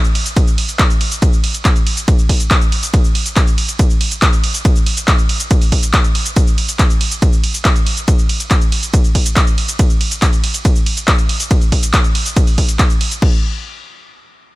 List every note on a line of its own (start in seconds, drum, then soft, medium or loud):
0.04 closed hi-hat soft
0.04 shaker soft
0.15 open hi-hat loud
0.15 ride medium
0.26 closed hi-hat medium
0.26 shaker medium
0.37 kick loud
0.37 closed hi-hat medium
0.37 ride medium
0.37 shaker medium
0.47 shaker soft
0.58 open hi-hat loud
0.58 ride medium
0.69 closed hi-hat medium
0.69 shaker medium
0.79 kick loud
0.79 clap loud
0.79 closed hi-hat medium
0.79 ride medium
0.79 shaker medium
0.90 closed hi-hat soft
0.90 shaker soft
1.01 open hi-hat loud
1.01 ride medium
1.12 closed hi-hat medium
1.12 shaker medium
1.22 kick loud
1.22 closed hi-hat medium
1.22 ride medium
1.22 shaker medium
1.33 shaker soft
1.44 open hi-hat loud
1.44 ride medium
1.54 closed hi-hat medium
1.54 shaker medium
1.65 kick loud
1.65 clap loud
1.65 closed hi-hat medium
1.65 ride medium
1.65 shaker medium
1.76 closed hi-hat soft
1.76 shaker soft
1.87 open hi-hat loud
1.87 ride medium
1.97 closed hi-hat medium
1.97 shaker medium
2.08 kick loud
2.08 closed hi-hat medium
2.08 ride medium
2.08 shaker medium
2.19 shaker soft
2.29 kick medium
2.29 open hi-hat loud
2.29 ride medium
2.40 closed hi-hat medium
2.40 shaker medium
2.51 kick loud
2.51 clap loud
2.51 closed hi-hat medium
2.51 ride medium
2.51 shaker medium
2.62 closed hi-hat soft
2.62 shaker soft
2.72 open hi-hat loud
2.72 ride medium
2.83 closed hi-hat medium
2.83 shaker medium
2.94 kick loud
2.94 closed hi-hat medium
2.94 ride medium
2.94 shaker medium
3.04 shaker soft
3.15 open hi-hat loud
3.15 ride medium
3.26 closed hi-hat medium
3.26 shaker medium
3.37 kick loud
3.37 clap loud
3.37 closed hi-hat medium
3.37 ride medium
3.37 shaker medium
3.47 closed hi-hat soft
3.47 shaker soft
3.58 open hi-hat loud
3.58 ride medium
3.69 closed hi-hat medium
3.69 shaker medium
3.79 kick loud
3.79 closed hi-hat medium
3.79 ride medium
3.79 shaker medium
3.90 shaker soft
4.01 open hi-hat loud
4.01 ride medium
4.11 closed hi-hat medium
4.11 shaker medium
4.22 kick loud
4.22 clap loud
4.22 closed hi-hat medium
4.22 ride medium
4.22 shaker medium
4.33 closed hi-hat soft
4.33 shaker soft
4.44 open hi-hat loud
4.44 ride medium
4.54 closed hi-hat medium
4.54 shaker medium
4.65 kick loud
4.65 closed hi-hat medium
4.65 ride medium
4.65 shaker medium
4.76 shaker soft
4.86 open hi-hat loud
4.86 ride medium
4.97 closed hi-hat medium
4.97 shaker medium
5.08 kick loud
5.08 clap loud
5.08 closed hi-hat medium
5.08 ride medium
5.08 shaker medium
5.19 closed hi-hat soft
5.19 shaker soft
5.29 open hi-hat loud
5.29 ride medium
5.40 closed hi-hat medium
5.40 shaker medium
5.51 kick loud
5.51 closed hi-hat medium
5.51 ride medium
5.51 shaker medium
5.61 open hi-hat medium
5.61 shaker soft
5.72 kick medium
5.72 open hi-hat loud
5.72 ride medium
5.83 closed hi-hat soft
5.83 shaker medium
5.94 kick loud
5.94 clap loud
5.94 closed hi-hat medium
5.94 ride medium
5.94 shaker medium
6.04 closed hi-hat soft
6.04 shaker soft
6.15 open hi-hat loud
6.15 ride medium
6.26 closed hi-hat medium
6.26 shaker medium
6.36 kick loud
6.36 closed hi-hat medium
6.36 ride medium
6.36 shaker medium
6.47 shaker soft
6.58 open hi-hat loud
6.58 ride medium
6.69 closed hi-hat medium
6.69 shaker medium
6.79 kick loud
6.79 clap loud
6.79 closed hi-hat medium
6.79 ride medium
6.79 shaker medium
6.90 closed hi-hat soft
6.90 shaker soft
7.01 open hi-hat loud
7.01 ride medium
7.12 closed hi-hat medium
7.12 shaker medium
7.22 kick loud
7.22 closed hi-hat medium
7.22 ride medium
7.22 shaker medium
7.33 shaker soft
7.44 open hi-hat loud
7.44 ride medium
7.54 closed hi-hat medium
7.54 shaker medium
7.65 kick loud
7.65 clap loud
7.65 closed hi-hat medium
7.65 ride medium
7.65 shaker medium
7.76 closed hi-hat soft
7.76 shaker soft
7.87 open hi-hat loud
7.87 ride medium
7.97 closed hi-hat medium
7.97 shaker medium
8.08 kick loud
8.08 closed hi-hat medium
8.08 ride medium
8.08 shaker medium
8.19 shaker soft
8.29 open hi-hat loud
8.29 ride medium
8.40 closed hi-hat medium
8.40 shaker medium
8.51 kick loud
8.51 clap loud
8.51 closed hi-hat medium
8.51 ride medium
8.51 shaker medium
8.62 closed hi-hat soft
8.62 shaker soft
8.72 open hi-hat loud
8.72 ride medium
8.83 closed hi-hat medium
8.83 shaker medium
8.94 kick loud
8.94 closed hi-hat medium
8.94 ride medium
8.94 shaker medium
9.04 shaker soft
9.15 kick medium
9.15 open hi-hat loud
9.15 ride medium
9.26 closed hi-hat medium
9.26 shaker medium
9.36 kick loud
9.36 clap loud
9.36 closed hi-hat medium
9.36 ride medium
9.36 shaker medium
9.47 closed hi-hat soft
9.47 shaker soft
9.58 open hi-hat loud
9.58 ride medium
9.69 closed hi-hat medium
9.69 shaker medium
9.79 kick loud
9.79 closed hi-hat medium
9.79 ride medium
9.79 shaker medium
9.90 shaker soft
10.01 open hi-hat loud
10.01 ride medium
10.11 closed hi-hat medium
10.11 shaker medium
10.22 kick loud
10.22 clap loud
10.22 closed hi-hat medium
10.22 ride medium
10.22 shaker medium
10.33 closed hi-hat soft
10.33 shaker soft
10.44 open hi-hat loud
10.44 ride medium
10.54 closed hi-hat medium
10.54 shaker medium
10.65 kick loud
10.65 closed hi-hat medium
10.65 ride medium
10.65 shaker medium
10.76 shaker soft
10.86 open hi-hat loud
10.86 ride medium
10.97 closed hi-hat medium
10.97 shaker medium
11.08 kick loud
11.08 clap loud
11.08 closed hi-hat medium
11.08 ride medium
11.08 shaker medium
11.19 closed hi-hat soft
11.19 shaker soft
11.29 open hi-hat loud
11.29 ride medium
11.40 closed hi-hat medium
11.40 shaker medium
11.51 kick loud
11.51 closed hi-hat medium
11.51 ride medium
11.51 shaker medium
11.62 closed hi-hat soft
11.62 shaker soft
11.72 kick medium
11.72 open hi-hat loud
11.72 ride medium
11.83 closed hi-hat medium
11.83 shaker medium
11.94 kick loud
11.94 clap loud
11.94 closed hi-hat medium
11.94 ride medium
11.94 shaker medium
12.04 closed hi-hat soft
12.04 shaker soft
12.15 open hi-hat loud
12.15 ride medium
12.26 closed hi-hat medium
12.26 shaker medium
12.37 kick loud
12.37 closed hi-hat medium
12.37 ride medium
12.37 shaker medium
12.47 open hi-hat medium
12.47 shaker soft
12.58 kick medium
12.58 open hi-hat loud
12.58 ride medium
12.69 closed hi-hat medium
12.69 shaker medium
12.79 kick loud
12.79 clap loud
12.79 closed hi-hat medium
12.79 ride medium
12.79 shaker medium
12.90 closed hi-hat soft
12.90 shaker soft
13.01 open hi-hat loud
13.01 ride medium
13.11 closed hi-hat medium
13.11 shaker medium
13.22 kick loud
13.22 crash medium